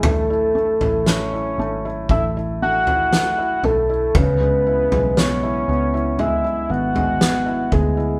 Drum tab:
SD |----o-------o---|----o-------o---|
FT |o--o----o--o--o-|o--o----o--o--o-|
BD |--------o-------|o-------------o-|